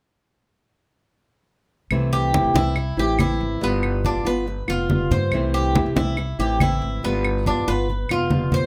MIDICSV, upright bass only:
0, 0, Header, 1, 2, 480
1, 0, Start_track
1, 0, Key_signature, 0, "major"
1, 0, Tempo, 426439
1, 2156, Time_signature, 4, 2, 24, 8
1, 9748, End_track
2, 0, Start_track
2, 0, Title_t, "Upright bass"
2, 0, Program_c, 0, 32
2, 2146, Note_on_c, 0, 36, 88
2, 2721, Note_off_c, 0, 36, 0
2, 2749, Note_on_c, 0, 36, 71
2, 2854, Note_off_c, 0, 36, 0
2, 2861, Note_on_c, 0, 36, 82
2, 3324, Note_off_c, 0, 36, 0
2, 3343, Note_on_c, 0, 33, 72
2, 3806, Note_off_c, 0, 33, 0
2, 3834, Note_on_c, 0, 32, 88
2, 4060, Note_off_c, 0, 32, 0
2, 4067, Note_on_c, 0, 31, 93
2, 4642, Note_off_c, 0, 31, 0
2, 4670, Note_on_c, 0, 31, 78
2, 4775, Note_off_c, 0, 31, 0
2, 4782, Note_on_c, 0, 31, 75
2, 5245, Note_off_c, 0, 31, 0
2, 5270, Note_on_c, 0, 29, 71
2, 5729, Note_off_c, 0, 29, 0
2, 5749, Note_on_c, 0, 43, 87
2, 5973, Note_off_c, 0, 43, 0
2, 5980, Note_on_c, 0, 36, 92
2, 6558, Note_off_c, 0, 36, 0
2, 6597, Note_on_c, 0, 36, 80
2, 6704, Note_off_c, 0, 36, 0
2, 6710, Note_on_c, 0, 36, 85
2, 7169, Note_off_c, 0, 36, 0
2, 7193, Note_on_c, 0, 33, 77
2, 7650, Note_off_c, 0, 33, 0
2, 7675, Note_on_c, 0, 32, 89
2, 7903, Note_off_c, 0, 32, 0
2, 7926, Note_on_c, 0, 31, 97
2, 8491, Note_off_c, 0, 31, 0
2, 8524, Note_on_c, 0, 31, 73
2, 8633, Note_off_c, 0, 31, 0
2, 8641, Note_on_c, 0, 31, 82
2, 9093, Note_off_c, 0, 31, 0
2, 9122, Note_on_c, 0, 29, 73
2, 9573, Note_off_c, 0, 29, 0
2, 9597, Note_on_c, 0, 35, 84
2, 9748, Note_off_c, 0, 35, 0
2, 9748, End_track
0, 0, End_of_file